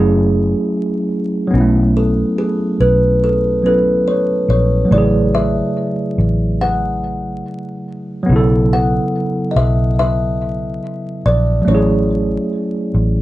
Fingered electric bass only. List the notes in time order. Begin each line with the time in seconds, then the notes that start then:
Already playing: F#1
1.54 B1
2.80 B1
4.49 A#1
4.91 A1
6.18 A1
8.29 B1
9.56 B1
11.26 A#1
11.67 A1
12.94 A1